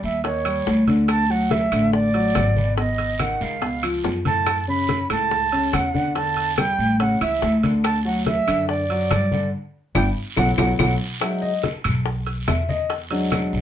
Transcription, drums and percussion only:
0.04 short guiro medium
0.24 high bongo medium
0.24 high conga soft
0.24 high timbale medium
0.24 long guiro medium
0.45 high bongo soft
0.45 high conga soft
0.45 high timbale loud
0.45 claves medium
0.66 high bongo medium
0.66 low bongo medium
0.66 high conga soft
0.66 short guiro medium
0.87 high bongo soft
0.87 high conga medium
0.87 high timbale medium
0.87 short guiro medium
1.08 high bongo medium
1.08 high timbale loud
1.08 long guiro medium
1.08 claves medium
1.29 high conga soft
1.51 high bongo medium
1.51 high conga loud
1.51 high timbale medium
1.51 short guiro medium
1.72 high bongo soft
1.72 high conga soft
1.72 high timbale loud
1.72 short guiro medium
1.72 claves medium
1.93 high bongo medium
1.93 high conga soft
1.93 long guiro medium
2.14 high bongo soft
2.14 high conga soft
2.14 high timbale medium
2.35 high bongo medium
2.35 low bongo medium
2.35 high conga medium
2.35 high timbale medium
2.35 low timbale medium
2.35 short guiro medium
2.35 claves medium
2.56 high bongo soft
2.56 high conga medium
2.56 short guiro medium
2.77 high bongo medium
2.77 high conga soft
2.77 high timbale medium
2.77 long guiro medium
2.98 high bongo soft
2.98 high conga soft
2.98 high timbale medium
3.19 high bongo medium
3.19 high conga loud
3.19 high timbale medium
3.19 short guiro medium
3.19 claves medium
3.41 short guiro medium
3.62 high bongo medium
3.62 high conga soft
3.62 high timbale medium
3.62 long guiro medium
3.83 high bongo soft
3.83 high conga soft
3.83 high timbale medium
3.83 claves medium
4.04 high bongo medium
4.04 low bongo medium
4.04 high conga soft
4.04 low timbale medium
4.04 short guiro medium
4.25 high bongo soft
4.25 high conga medium
4.25 high timbale medium
4.25 short guiro medium
4.46 high bongo medium
4.46 high conga soft
4.46 high timbale loud
4.46 long guiro medium
4.46 claves medium
4.68 high conga soft
4.89 high bongo medium
4.89 high conga medium
4.89 high timbale medium
4.89 short guiro medium
5.10 high bongo soft
5.10 high conga soft
5.10 high timbale loud
5.10 short guiro medium
5.10 claves medium
5.31 high bongo medium
5.31 high conga soft
5.31 long guiro medium
5.52 high bongo soft
5.52 high conga soft
5.52 high timbale medium
5.73 high bongo medium
5.73 low bongo medium
5.73 high conga medium
5.73 high timbale medium
5.73 short guiro medium
5.73 claves medium
5.94 high bongo soft
5.94 high conga medium
5.94 short guiro medium
6.15 high bongo medium
6.15 high conga soft
6.15 high timbale medium
6.15 long guiro medium
6.37 high bongo soft
6.37 high conga soft
6.37 high timbale medium
6.58 high bongo medium
6.58 high conga loud
6.58 high timbale medium
6.58 short guiro medium
6.58 claves medium
6.79 short guiro medium
7.00 high bongo medium
7.00 high conga soft
7.00 high timbale medium
7.00 long guiro medium
7.21 high bongo soft
7.21 high conga soft
7.21 high timbale loud
7.21 claves medium
7.42 high bongo medium
7.42 low bongo medium
7.42 high conga soft
7.42 short guiro medium
7.63 high bongo soft
7.63 high conga medium
7.63 high timbale medium
7.63 short guiro medium
7.84 high bongo medium
7.84 high conga soft
7.84 high timbale medium
7.84 long guiro medium
7.84 claves medium
8.05 high conga soft
8.26 high bongo medium
8.26 high conga loud
8.26 high timbale medium
8.26 short guiro medium
8.47 high bongo soft
8.47 high conga soft
8.47 high timbale loud
8.47 short guiro medium
8.47 claves medium
8.69 high bongo medium
8.69 high conga soft
8.69 long guiro medium
8.90 high bongo soft
8.90 high conga soft
8.90 high timbale medium
9.10 high bongo medium
9.10 low bongo medium
9.10 high conga medium
9.10 high timbale medium
9.10 short guiro medium
9.10 claves medium
9.32 high bongo soft
9.32 high conga medium
9.32 short guiro medium
9.95 high bongo medium
9.95 high conga loud
9.95 high timbale loud
9.95 long guiro loud
9.95 claves loud
10.37 high bongo medium
10.37 high conga medium
10.37 high timbale loud
10.37 long guiro medium
10.37 claves medium
10.58 high bongo medium
10.58 high conga medium
10.58 high timbale loud
10.58 long guiro loud
10.58 claves medium
10.79 high bongo medium
10.79 high conga loud
10.79 high timbale medium
10.79 long guiro medium
10.79 claves loud
11.21 high bongo medium
11.21 high conga soft
11.21 high timbale medium
11.21 long guiro medium
11.21 claves medium
11.43 high conga soft
11.63 high bongo medium
11.63 high conga loud
11.63 high timbale medium
11.63 short guiro medium
11.84 high bongo soft
11.84 high conga soft
11.84 low conga medium
11.84 high timbale loud
11.84 short guiro medium
11.84 claves medium
12.06 high bongo medium
12.06 long guiro medium
12.27 high bongo soft
12.27 high conga soft
12.27 high timbale medium
12.48 high bongo medium
12.48 low bongo medium
12.48 high conga medium
12.48 high timbale medium
12.48 low timbale medium
12.48 short guiro medium
12.48 claves medium
12.69 high bongo soft
12.69 high conga medium
12.69 short guiro medium
12.90 high bongo medium
12.90 high conga soft
12.90 high timbale medium
12.90 long guiro medium
13.11 high bongo soft
13.11 high conga soft
13.11 high timbale medium
13.32 high bongo medium
13.32 high conga medium
13.32 high timbale loud
13.32 short guiro medium
13.32 claves medium
13.53 short guiro medium

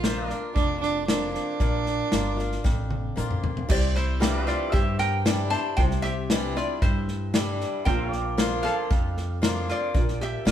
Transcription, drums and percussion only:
0.04 snare medium
0.04 hi-hat pedal medium
0.30 snare soft
0.56 kick loud
0.56 snare soft
0.83 snare soft
1.08 snare loud
1.08 hi-hat pedal medium
1.35 snare soft
1.60 kick loud
1.60 snare soft
1.86 snare soft
2.12 snare loud
2.12 hi-hat pedal medium
2.39 snare soft
2.52 snare soft
2.64 kick loud
2.64 snare medium
2.91 high tom medium
3.17 hi-hat pedal medium
3.17 mid tom medium
3.31 mid tom medium
3.44 floor tom medium
3.57 floor tom medium
3.70 kick loud
3.70 snare soft
3.70 crash loud
3.96 snare soft
4.22 snare loud
4.22 hi-hat pedal medium
4.48 snare soft
4.74 kick loud
4.74 snare soft
5.00 snare soft
5.26 snare loud
5.26 hi-hat pedal medium
5.52 snare soft
5.78 kick loud
5.78 snare soft
5.91 snare soft
6.04 snare soft
6.30 snare loud
6.30 hi-hat pedal medium
6.57 snare soft
6.82 kick loud
6.82 snare soft
7.08 snare soft
7.34 snare loud
7.34 hi-hat pedal loud
7.61 snare soft
7.86 kick loud
7.86 snare soft
8.13 snare soft
8.38 snare loud
8.38 hi-hat pedal medium
8.65 snare soft
8.91 kick loud
8.91 snare soft
9.17 snare soft
9.43 snare loud
9.43 hi-hat pedal medium
9.69 snare soft
9.94 kick loud
9.94 snare soft
10.08 snare soft
10.21 snare soft
10.47 snare loud
10.47 hi-hat pedal medium

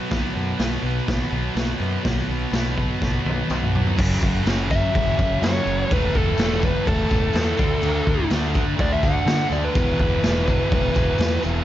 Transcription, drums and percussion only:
0.11 kick loud
0.11 snare loud
0.11 open hi-hat medium
0.59 snare loud
0.59 open hi-hat medium
0.59 tambourine loud
1.08 kick loud
1.08 snare loud
1.08 open hi-hat medium
1.57 snare loud
1.57 open hi-hat medium
1.57 tambourine loud
2.05 kick loud
2.05 snare loud
2.05 open hi-hat medium
2.53 snare loud
2.53 open hi-hat medium
2.53 tambourine medium
2.78 kick medium
3.02 kick loud
3.02 snare medium
3.26 high tom medium
3.50 mid tom medium
3.50 tambourine loud
3.63 mid tom medium
3.75 floor tom loud
3.87 floor tom medium
3.98 kick loud
3.98 crash loud
3.98 tambourine medium
3.98 crash medium
4.23 kick medium
4.23 tambourine soft
4.46 snare loud
4.46 tambourine medium
4.46 crash medium
4.71 kick medium
4.71 tambourine medium
4.95 kick loud
4.95 crash medium
5.19 kick medium
5.19 tambourine medium
5.43 snare loud
5.43 tambourine medium
5.43 crash medium
5.67 tambourine medium
5.91 kick loud
5.91 tambourine medium
5.91 crash medium
6.15 kick medium
6.15 tambourine soft
6.38 snare loud
6.38 tambourine medium
6.38 crash medium
6.62 kick medium
6.62 tambourine medium
6.87 kick loud
6.87 crash medium
7.10 kick medium
7.10 tambourine medium
7.33 snare loud
7.33 tambourine medium
7.33 crash medium
7.57 kick loud
7.57 tambourine medium
7.82 tambourine medium
7.82 crash medium
8.07 kick medium
8.07 tambourine soft
8.30 snare loud
8.30 tambourine medium
8.30 crash medium
8.54 kick medium
8.54 tambourine medium
8.79 kick loud
8.79 crash medium
9.03 kick medium
9.03 tambourine medium
9.27 snare loud
9.27 tambourine loud
9.27 crash medium
9.52 tambourine medium
9.75 kick loud
9.75 tambourine medium
9.75 crash medium
9.99 kick medium
9.99 tambourine soft
10.24 snare loud
10.24 tambourine loud
10.24 crash medium
10.48 kick medium
10.48 tambourine medium
10.72 kick loud
10.72 crash medium
10.95 kick medium
10.95 tambourine medium
11.18 snare loud
11.18 tambourine loud
11.18 crash medium
11.43 tambourine medium

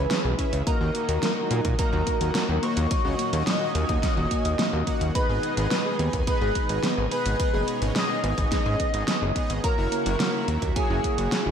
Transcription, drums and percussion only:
0.11 snare loud
0.11 closed hi-hat loud
0.39 kick medium
0.39 closed hi-hat medium
0.53 closed hi-hat medium
0.67 kick loud
0.67 closed hi-hat medium
0.95 closed hi-hat medium
1.09 closed hi-hat medium
1.23 snare loud
1.23 closed hi-hat loud
1.51 closed hi-hat medium
1.65 kick loud
1.65 closed hi-hat medium
1.79 kick loud
1.79 closed hi-hat loud
2.07 kick medium
2.07 closed hi-hat medium
2.21 closed hi-hat medium
2.35 snare loud
2.35 closed hi-hat loud
2.63 closed hi-hat medium
2.77 closed hi-hat medium
2.91 kick loud
2.91 closed hi-hat medium
3.19 closed hi-hat medium
3.33 closed hi-hat medium
3.47 snare loud
3.47 closed hi-hat medium
3.75 closed hi-hat medium
3.89 kick loud
3.89 closed hi-hat medium
4.03 kick loud
4.03 snare medium
4.03 closed hi-hat medium
4.31 kick medium
4.31 closed hi-hat medium
4.45 closed hi-hat medium
4.59 snare loud
4.59 closed hi-hat medium
4.87 kick medium
4.87 closed hi-hat medium
5.01 closed hi-hat medium
5.15 kick loud
5.15 closed hi-hat medium
5.43 closed hi-hat medium
5.57 closed hi-hat medium
5.71 snare loud
5.71 closed hi-hat medium
5.99 closed hi-hat medium
6.13 kick loud
6.13 closed hi-hat medium
6.27 kick loud
6.27 closed hi-hat medium
6.55 kick medium
6.55 closed hi-hat medium
6.69 closed hi-hat medium
6.83 snare loud
6.83 closed hi-hat medium
7.11 closed hi-hat medium
7.26 closed hi-hat medium
7.40 kick loud
7.40 closed hi-hat medium
7.68 closed hi-hat medium
7.82 closed hi-hat medium
7.96 snare loud
7.96 closed hi-hat medium
8.24 closed hi-hat medium
8.38 kick loud
8.38 closed hi-hat medium
8.52 kick loud
8.52 snare medium
8.52 closed hi-hat medium
8.80 kick medium
8.80 closed hi-hat medium
8.94 closed hi-hat medium
9.08 snare loud
9.08 closed hi-hat medium
9.36 kick medium
9.36 closed hi-hat medium
9.50 closed hi-hat medium
9.64 kick loud
9.64 closed hi-hat medium
9.92 closed hi-hat medium
10.06 closed hi-hat medium
10.20 snare loud
10.20 closed hi-hat medium
10.48 closed hi-hat medium
10.62 kick loud
10.62 closed hi-hat medium
10.76 kick loud
10.76 closed hi-hat medium
11.04 kick medium
11.04 closed hi-hat medium
11.18 closed hi-hat medium
11.32 snare loud
11.32 closed hi-hat medium

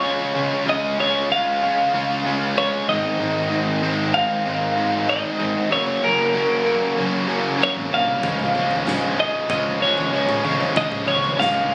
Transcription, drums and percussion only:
8.23 kick medium
8.23 floor tom medium
8.39 mid tom medium
8.55 floor tom medium
8.71 floor tom medium
8.87 snare medium
8.87 mid tom medium
9.50 kick loud
9.50 floor tom medium
9.98 floor tom medium
10.29 mid tom medium
10.45 floor tom medium
10.61 floor tom medium
10.76 kick medium
10.76 floor tom medium
10.92 mid tom medium
11.08 floor tom medium
11.24 floor tom medium
11.40 snare medium
11.40 mid tom medium

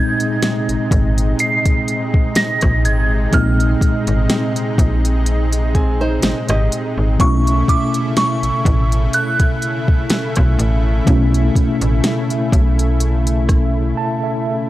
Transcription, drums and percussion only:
0.20 closed hi-hat soft
0.42 snare loud
0.42 closed hi-hat medium
0.69 closed hi-hat soft
0.91 kick loud
0.91 closed hi-hat medium
1.18 closed hi-hat medium
1.39 closed hi-hat medium
1.66 kick medium
1.66 closed hi-hat medium
1.88 closed hi-hat medium
2.14 kick loud
2.35 snare loud
2.35 closed hi-hat medium
2.61 kick loud
2.61 cross-stick medium
2.61 closed hi-hat soft
2.85 closed hi-hat medium
3.33 kick loud
3.33 closed hi-hat medium
3.60 closed hi-hat soft
3.81 kick loud
3.81 closed hi-hat medium
4.07 closed hi-hat soft
4.30 snare loud
4.30 closed hi-hat medium
4.56 closed hi-hat soft
4.78 kick loud
4.78 closed hi-hat medium
5.05 closed hi-hat medium
5.26 closed hi-hat medium
5.53 closed hi-hat medium
5.75 kick medium
5.75 closed hi-hat soft
6.22 snare loud
6.22 closed hi-hat medium
6.49 cross-stick medium
6.49 closed hi-hat medium
6.72 closed hi-hat medium
7.20 kick loud
7.20 closed hi-hat medium
7.47 closed hi-hat soft
7.68 kick medium
7.68 closed hi-hat medium
7.94 closed hi-hat soft
8.17 snare loud
8.17 closed hi-hat medium
8.43 closed hi-hat soft
8.65 kick loud
8.65 closed hi-hat medium
8.92 closed hi-hat medium
9.13 closed hi-hat medium
9.40 kick medium
9.40 closed hi-hat medium
9.62 closed hi-hat soft
9.88 kick loud
10.10 snare loud
10.10 closed hi-hat medium
10.36 kick medium
10.36 cross-stick medium
10.36 closed hi-hat medium
10.59 closed hi-hat medium
11.07 kick loud
11.07 closed hi-hat medium
11.34 closed hi-hat soft
11.55 kick medium
11.55 closed hi-hat medium
11.81 closed hi-hat medium
12.04 snare loud
12.04 closed hi-hat medium
12.30 closed hi-hat soft
12.52 kick loud
12.52 closed hi-hat medium
12.79 closed hi-hat medium
13.00 closed hi-hat medium
13.27 closed hi-hat medium
13.49 kick medium
13.49 cross-stick medium
13.49 closed hi-hat soft

